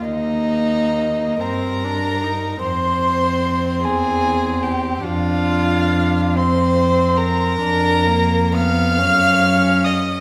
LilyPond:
<<
  \new Staff \with { instrumentName = "Violin" } { \time 6/8 \key f \dorian \tempo 4. = 48 ees''4. bes''4. | c'''4. aes''4 g''8 | f''4. c'''4 bes''8~ | \key ees \minor bes''4 f'''4. ees'''8 | }
  \new Staff \with { instrumentName = "Violin" } { \time 6/8 \key f \dorian ees'4. bes'4. | c''4. aes'4 g'8 | f'4. c''4 bes'8~ | \key ees \minor bes'4 f''4. ees''8 | }
  \new Staff \with { instrumentName = "Viola" } { \time 6/8 \key f \dorian bes4. c'8 d'8 ees'8 | c'2. | d'4. c'4. | \key ees \minor d'8 bes8 ces'8 des'4. | }
  \new Staff \with { instrumentName = "Cello" } { \clef bass \time 6/8 \key f \dorian ees,4. g,4. | f,4. e,4. | f,2. | \key ees \minor f,4. ges,4. | }
>>